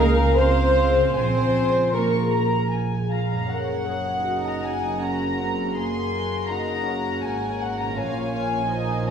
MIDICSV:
0, 0, Header, 1, 10, 480
1, 0, Start_track
1, 0, Tempo, 772201
1, 719, Time_signature, 3, 2, 24, 8
1, 3113, Tempo, 738007
1, 5778, End_track
2, 0, Start_track
2, 0, Title_t, "Flute"
2, 0, Program_c, 0, 73
2, 0, Note_on_c, 0, 82, 78
2, 230, Note_on_c, 0, 84, 69
2, 239, Note_off_c, 0, 82, 0
2, 547, Note_off_c, 0, 84, 0
2, 716, Note_on_c, 0, 84, 80
2, 1206, Note_on_c, 0, 82, 61
2, 1216, Note_off_c, 0, 84, 0
2, 1687, Note_off_c, 0, 82, 0
2, 5778, End_track
3, 0, Start_track
3, 0, Title_t, "Violin section"
3, 0, Program_c, 1, 48
3, 0, Note_on_c, 1, 77, 92
3, 695, Note_off_c, 1, 77, 0
3, 717, Note_on_c, 1, 80, 65
3, 1155, Note_off_c, 1, 80, 0
3, 1205, Note_on_c, 1, 85, 72
3, 1429, Note_off_c, 1, 85, 0
3, 1447, Note_on_c, 1, 82, 67
3, 1682, Note_off_c, 1, 82, 0
3, 1687, Note_on_c, 1, 80, 62
3, 1929, Note_off_c, 1, 80, 0
3, 1935, Note_on_c, 1, 77, 61
3, 1935, Note_on_c, 1, 82, 56
3, 2156, Note_off_c, 1, 77, 0
3, 2171, Note_on_c, 1, 78, 75
3, 2172, Note_off_c, 1, 82, 0
3, 2762, Note_off_c, 1, 78, 0
3, 2771, Note_on_c, 1, 82, 63
3, 2882, Note_on_c, 1, 80, 70
3, 2884, Note_off_c, 1, 82, 0
3, 3115, Note_off_c, 1, 80, 0
3, 3120, Note_on_c, 1, 82, 76
3, 3604, Note_off_c, 1, 82, 0
3, 3607, Note_on_c, 1, 84, 77
3, 4074, Note_off_c, 1, 84, 0
3, 4077, Note_on_c, 1, 82, 82
3, 4559, Note_off_c, 1, 82, 0
3, 4561, Note_on_c, 1, 80, 72
3, 4803, Note_off_c, 1, 80, 0
3, 4806, Note_on_c, 1, 78, 70
3, 4925, Note_off_c, 1, 78, 0
3, 4928, Note_on_c, 1, 82, 67
3, 5045, Note_off_c, 1, 82, 0
3, 5045, Note_on_c, 1, 80, 81
3, 5754, Note_off_c, 1, 80, 0
3, 5755, Note_on_c, 1, 82, 87
3, 5778, Note_off_c, 1, 82, 0
3, 5778, End_track
4, 0, Start_track
4, 0, Title_t, "Violin section"
4, 0, Program_c, 2, 48
4, 0, Note_on_c, 2, 70, 77
4, 232, Note_off_c, 2, 70, 0
4, 232, Note_on_c, 2, 72, 86
4, 708, Note_off_c, 2, 72, 0
4, 719, Note_on_c, 2, 72, 89
4, 1194, Note_off_c, 2, 72, 0
4, 1210, Note_on_c, 2, 70, 62
4, 1690, Note_off_c, 2, 70, 0
4, 2168, Note_on_c, 2, 73, 49
4, 2170, Note_on_c, 2, 78, 57
4, 2617, Note_off_c, 2, 73, 0
4, 2644, Note_on_c, 2, 70, 53
4, 3106, Note_off_c, 2, 70, 0
4, 3113, Note_on_c, 2, 70, 55
4, 3575, Note_off_c, 2, 78, 0
4, 3591, Note_off_c, 2, 70, 0
4, 3599, Note_on_c, 2, 80, 60
4, 3602, Note_on_c, 2, 68, 59
4, 3842, Note_off_c, 2, 68, 0
4, 3842, Note_on_c, 2, 70, 59
4, 4070, Note_off_c, 2, 80, 0
4, 4088, Note_on_c, 2, 78, 48
4, 4547, Note_off_c, 2, 70, 0
4, 4557, Note_on_c, 2, 70, 60
4, 5031, Note_off_c, 2, 70, 0
4, 5040, Note_on_c, 2, 73, 58
4, 5040, Note_on_c, 2, 77, 66
4, 5046, Note_off_c, 2, 78, 0
4, 5263, Note_off_c, 2, 77, 0
4, 5271, Note_on_c, 2, 77, 60
4, 5508, Note_off_c, 2, 77, 0
4, 5513, Note_on_c, 2, 75, 57
4, 5516, Note_off_c, 2, 73, 0
4, 5518, Note_on_c, 2, 72, 54
4, 5778, Note_off_c, 2, 72, 0
4, 5778, Note_off_c, 2, 75, 0
4, 5778, End_track
5, 0, Start_track
5, 0, Title_t, "Harp"
5, 0, Program_c, 3, 46
5, 0, Note_on_c, 3, 49, 82
5, 0, Note_on_c, 3, 56, 60
5, 0, Note_on_c, 3, 65, 51
5, 0, Note_on_c, 3, 68, 62
5, 0, Note_on_c, 3, 77, 72
5, 0, Note_on_c, 3, 80, 68
5, 106, Note_off_c, 3, 80, 0
5, 113, Note_on_c, 3, 80, 56
5, 226, Note_off_c, 3, 77, 0
5, 233, Note_on_c, 3, 77, 64
5, 472, Note_off_c, 3, 68, 0
5, 479, Note_on_c, 3, 68, 52
5, 593, Note_off_c, 3, 49, 0
5, 601, Note_on_c, 3, 49, 51
5, 722, Note_on_c, 3, 46, 58
5, 841, Note_on_c, 3, 53, 48
5, 958, Note_off_c, 3, 56, 0
5, 965, Note_on_c, 3, 56, 42
5, 1090, Note_on_c, 3, 61, 40
5, 1204, Note_off_c, 3, 65, 0
5, 1211, Note_on_c, 3, 65, 46
5, 1321, Note_off_c, 3, 68, 0
5, 1329, Note_on_c, 3, 68, 51
5, 1454, Note_on_c, 3, 70, 52
5, 1567, Note_off_c, 3, 77, 0
5, 1574, Note_on_c, 3, 77, 50
5, 1806, Note_off_c, 3, 68, 0
5, 1814, Note_on_c, 3, 68, 44
5, 1926, Note_off_c, 3, 65, 0
5, 1933, Note_on_c, 3, 65, 42
5, 2050, Note_off_c, 3, 56, 0
5, 2057, Note_on_c, 3, 56, 43
5, 2064, Note_on_c, 3, 42, 42
5, 2093, Note_on_c, 3, 58, 36
5, 2142, Note_off_c, 3, 68, 0
5, 2149, Note_on_c, 3, 68, 39
5, 2188, Note_off_c, 3, 53, 0
5, 2189, Note_off_c, 3, 46, 0
5, 2190, Note_off_c, 3, 65, 0
5, 2192, Note_off_c, 3, 77, 0
5, 2537, Note_off_c, 3, 80, 0
5, 3025, Note_off_c, 3, 49, 0
5, 3533, Note_off_c, 3, 61, 0
5, 3914, Note_off_c, 3, 70, 0
5, 4545, Note_off_c, 3, 56, 0
5, 4552, Note_off_c, 3, 42, 0
5, 4582, Note_off_c, 3, 58, 0
5, 4641, Note_off_c, 3, 68, 0
5, 4933, Note_on_c, 3, 46, 51
5, 4962, Note_on_c, 3, 58, 47
5, 5021, Note_on_c, 3, 65, 41
5, 5778, Note_off_c, 3, 46, 0
5, 5778, Note_off_c, 3, 58, 0
5, 5778, Note_off_c, 3, 65, 0
5, 5778, End_track
6, 0, Start_track
6, 0, Title_t, "Viola section"
6, 0, Program_c, 4, 48
6, 0, Note_on_c, 4, 70, 95
6, 231, Note_on_c, 4, 72, 98
6, 235, Note_off_c, 4, 70, 0
6, 717, Note_off_c, 4, 72, 0
6, 724, Note_on_c, 4, 72, 86
6, 1197, Note_off_c, 4, 72, 0
6, 1205, Note_on_c, 4, 70, 68
6, 1687, Note_off_c, 4, 70, 0
6, 2169, Note_on_c, 4, 58, 48
6, 2172, Note_on_c, 4, 70, 54
6, 2390, Note_off_c, 4, 70, 0
6, 2409, Note_on_c, 4, 68, 48
6, 2617, Note_off_c, 4, 58, 0
6, 2644, Note_off_c, 4, 68, 0
6, 2644, Note_on_c, 4, 63, 51
6, 2644, Note_on_c, 4, 66, 50
6, 3109, Note_off_c, 4, 66, 0
6, 3115, Note_off_c, 4, 63, 0
6, 3116, Note_on_c, 4, 61, 54
6, 3116, Note_on_c, 4, 66, 55
6, 3359, Note_off_c, 4, 61, 0
6, 3362, Note_on_c, 4, 60, 48
6, 3603, Note_off_c, 4, 60, 0
6, 3603, Note_on_c, 4, 58, 51
6, 4072, Note_off_c, 4, 58, 0
6, 4082, Note_on_c, 4, 63, 58
6, 4321, Note_off_c, 4, 63, 0
6, 4321, Note_on_c, 4, 61, 49
6, 5018, Note_off_c, 4, 66, 0
6, 5035, Note_off_c, 4, 61, 0
6, 5043, Note_on_c, 4, 61, 54
6, 5043, Note_on_c, 4, 65, 56
6, 5508, Note_off_c, 4, 61, 0
6, 5508, Note_off_c, 4, 65, 0
6, 5517, Note_on_c, 4, 65, 66
6, 5518, Note_on_c, 4, 63, 71
6, 5749, Note_off_c, 4, 63, 0
6, 5752, Note_on_c, 4, 61, 59
6, 5778, Note_off_c, 4, 61, 0
6, 5778, Note_off_c, 4, 65, 0
6, 5778, End_track
7, 0, Start_track
7, 0, Title_t, "Clarinet"
7, 0, Program_c, 5, 71
7, 0, Note_on_c, 5, 61, 73
7, 537, Note_off_c, 5, 61, 0
7, 723, Note_on_c, 5, 65, 72
7, 1906, Note_off_c, 5, 65, 0
7, 5778, End_track
8, 0, Start_track
8, 0, Title_t, "French horn section"
8, 0, Program_c, 6, 60
8, 0, Note_on_c, 6, 58, 79
8, 227, Note_on_c, 6, 72, 96
8, 232, Note_off_c, 6, 58, 0
8, 712, Note_on_c, 6, 60, 80
8, 716, Note_off_c, 6, 72, 0
8, 1191, Note_off_c, 6, 60, 0
8, 1201, Note_on_c, 6, 58, 59
8, 1685, Note_off_c, 6, 58, 0
8, 2167, Note_on_c, 6, 58, 59
8, 2168, Note_on_c, 6, 68, 60
8, 5016, Note_off_c, 6, 58, 0
8, 5016, Note_off_c, 6, 68, 0
8, 5042, Note_on_c, 6, 65, 62
8, 5043, Note_on_c, 6, 58, 64
8, 5778, Note_off_c, 6, 58, 0
8, 5778, Note_off_c, 6, 65, 0
8, 5778, End_track
9, 0, Start_track
9, 0, Title_t, "Cello section"
9, 0, Program_c, 7, 48
9, 0, Note_on_c, 7, 58, 77
9, 234, Note_off_c, 7, 58, 0
9, 236, Note_on_c, 7, 60, 80
9, 711, Note_off_c, 7, 60, 0
9, 719, Note_on_c, 7, 60, 82
9, 1194, Note_off_c, 7, 60, 0
9, 1208, Note_on_c, 7, 58, 60
9, 1688, Note_off_c, 7, 58, 0
9, 2174, Note_on_c, 7, 42, 59
9, 4537, Note_off_c, 7, 42, 0
9, 4563, Note_on_c, 7, 44, 55
9, 5034, Note_off_c, 7, 44, 0
9, 5047, Note_on_c, 7, 46, 66
9, 5778, Note_off_c, 7, 46, 0
9, 5778, End_track
10, 0, Start_track
10, 0, Title_t, "Double bass section"
10, 0, Program_c, 8, 48
10, 0, Note_on_c, 8, 37, 98
10, 694, Note_off_c, 8, 37, 0
10, 720, Note_on_c, 8, 34, 70
10, 2017, Note_off_c, 8, 34, 0
10, 2175, Note_on_c, 8, 30, 57
10, 4538, Note_off_c, 8, 30, 0
10, 4562, Note_on_c, 8, 32, 56
10, 5033, Note_off_c, 8, 32, 0
10, 5043, Note_on_c, 8, 34, 69
10, 5778, Note_off_c, 8, 34, 0
10, 5778, End_track
0, 0, End_of_file